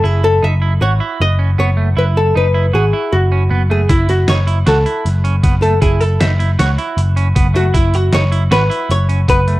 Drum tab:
HH |----------|----------|xxxxxxxxxx|xxxxxxxxxx|
SD |----------|----------|-oo-o-o-o-|--ooo-----|
BD |----------|----------|o-------o-|o-------o-|

HH |xxxxxxxxxx|
SD |--o-o-----|
BD |o-------o-|